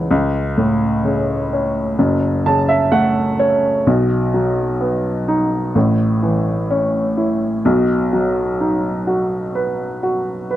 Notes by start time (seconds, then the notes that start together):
Already playing: C#2 G#2 C#3 E3
0.11 C#2
0.58 A2
1.05 C#3
1.53 C#4
1.99 F#1 F#2
2.46 C#3 A5
2.69 E5
2.92 A3 F#5
3.39 C#4 C#5
3.87 B1 B2
4.34 F#3
4.81 B3
5.28 D#4
5.75 A1 A2
6.23 E3
6.71 C#4
7.17 E4
7.65 B1 B2
8.13 F#3
8.61 D#4
9.07 F#4
9.55 B4
10.03 F#4
10.51 B4